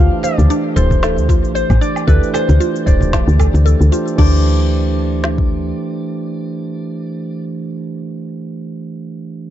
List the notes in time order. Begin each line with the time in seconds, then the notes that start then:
Already playing: E3 A3 D4 F4 F5
0.00 G4 C5
0.23 C5 D5, cajon slap, shaker
0.38 D2, cajon bass, shaker
0.50 D4, shaker
0.75 D1 E3 A3 D4 G4 A4 C5, cajon slap, shaker
0.91 cajon bass, kick, shaker
1.03 A4, snare, shaker
1.17 D2, shaker
1.29 F4, kick, cajon slap, shaker
1.44 A1, shaker
1.55 C5, shaker
1.70 A1, kick, cajon bass, low woodblock, shaker
1.81 D4 D5, shaker
1.96 low woodblock, shaker
2.07 D2 E3 A3 D4 G4 A4 B4 D5, kick, shaker
2.23 shaker
2.34 A4 C5, cajon slap, low woodblock, shaker
2.49 D2, cajon bass, cajon slap, shaker
2.60 F4, shaker
2.76 shaker
2.85 D1 E3 A3 D4 G4 C5 D5, kick, cajon slap, shaker
2.89 C5
3.01 cajon bass, shaker
3.13 D4, kick, snare, cajon slap, shaker
3.28 D2, shaker
3.39 A4, kick, low woodblock, shaker
3.54 D2, cajon slap, shaker
3.66 A4, shaker
3.81 D2, shaker
3.91 E3 A3 D4 F4 G4 C5, shaker
4.08 shaker
4.15 D2 E3 A3 D4 D5, kick, crash
4.20 G4 C5
5.24 snare
5.38 kick